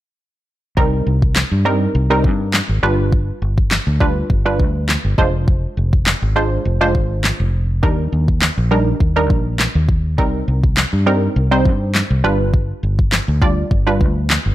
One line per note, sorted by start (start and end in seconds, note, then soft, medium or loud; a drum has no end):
0.77 1.00 C2 medium
0.77 1.42 G3 medium
0.77 1.42 C4 medium
0.77 1.42 D#4 medium
0.77 1.42 A#4 loud
0.77 kick loud
1.07 1.42 C2 medium
1.22 kick medium
1.36 snare medium
1.36 clap loud
1.52 1.86 G2 medium
1.65 1.98 G3 medium
1.65 1.98 C4 medium
1.65 1.98 D#4 medium
1.65 1.98 A#4 medium
1.95 2.26 C2 medium
2.10 2.82 G3 medium
2.10 2.83 C4 medium
2.10 2.83 D#4 medium
2.10 2.83 A#4 medium
2.24 2.60 G2 medium
2.24 kick medium
2.54 snare medium
2.54 clap loud
2.69 2.80 G#1 medium
2.83 3.30 G1 medium
2.83 3.77 G3 medium
2.83 3.77 D4 medium
2.83 3.78 F4 medium
2.83 3.78 B4 loud
3.12 kick loud
3.42 3.78 G1 medium
3.58 kick medium
3.71 snare medium
3.71 clap loud
3.87 4.21 D2 medium
4.00 4.33 G3 medium
4.00 4.33 D4 medium
4.00 4.33 F4 medium
4.00 4.33 B4 medium
4.00 kick medium
4.30 4.61 G1 medium
4.30 kick medium
4.45 5.18 G3 medium
4.45 5.17 D4 medium
4.45 5.17 F4 medium
4.45 5.18 B4 medium
4.60 4.95 D2 medium
4.60 kick loud
4.89 snare medium
4.89 clap loud
5.05 5.15 G1 medium
5.18 5.65 F1 medium
5.18 6.13 G#3 medium
5.18 6.13 D4 medium
5.18 6.13 F4 medium
5.18 6.13 C5 medium
5.18 kick medium
5.48 kick loud
5.77 6.13 F1 medium
5.93 kick medium
6.06 snare medium
6.06 clap loud
6.22 6.57 G#1 medium
6.36 6.68 G#3 medium
6.36 6.68 D4 medium
6.36 6.68 F4 medium
6.36 6.68 C5 medium
6.65 6.95 F1 loud
6.81 7.55 G#3 medium
6.81 7.55 D4 medium
6.81 7.55 F4 medium
6.81 7.55 C5 loud
6.95 7.31 G#1 medium
6.95 kick medium
7.24 snare medium
7.24 clap loud
7.40 7.85 F1 medium
7.83 8.06 D#2 medium
7.83 8.47 G3 medium
7.83 8.48 D4 medium
7.83 8.48 D#4 medium
7.83 8.48 A#4 loud
7.83 kick loud
8.12 8.48 D#2 medium
8.28 kick medium
8.42 snare medium
8.42 clap loud
8.57 8.92 A#1 medium
8.71 9.03 G3 medium
8.71 9.03 D4 medium
8.71 9.04 D#4 medium
8.71 9.04 A#4 medium
9.00 9.30 D#2 medium
9.00 kick medium
9.16 9.90 G3 medium
9.16 9.90 D4 medium
9.16 9.90 D#4 medium
9.16 9.91 A#4 loud
9.30 9.66 A#1 medium
9.30 kick medium
9.59 snare medium
9.59 clap loud
9.75 10.18 D#2 medium
9.89 kick medium
10.18 10.42 C2 medium
10.18 10.83 G3 medium
10.18 10.83 C4 medium
10.18 10.83 D#4 medium
10.18 10.83 A#4 medium
10.18 kick loud
10.48 10.84 C2 medium
10.64 kick medium
10.77 snare medium
10.77 clap loud
10.93 11.27 G2 medium
11.06 11.39 G3 medium
11.06 11.39 C4 medium
11.06 11.39 D#4 medium
11.06 11.39 A#4 medium
11.36 11.67 C2 medium
11.51 12.23 G3 medium
11.51 12.24 C4 medium
11.51 12.24 D#4 medium
11.51 12.24 C5 loud
11.65 12.01 G2 medium
11.65 kick medium
11.95 snare medium
11.95 clap loud
12.10 12.21 C2 medium
12.24 12.71 G1 loud
12.24 13.19 G3 medium
12.24 13.19 D4 medium
12.24 13.19 F4 medium
12.24 13.19 B4 loud
12.54 kick loud
12.83 13.19 G1 medium
12.99 kick medium
13.12 snare medium
13.12 clap loud
13.28 13.62 D2 medium
13.42 13.74 G3 medium
13.42 13.74 D4 medium
13.42 13.74 F4 medium
13.42 13.74 D5 loud
13.42 kick medium
13.71 14.02 G1 medium
13.71 kick medium
13.87 14.55 G3 medium
13.87 14.55 D4 medium
13.87 14.55 F4 medium
13.87 14.55 B4 loud
14.01 14.36 D2 medium
14.01 kick medium
14.30 snare medium
14.30 clap loud
14.46 14.55 G1 medium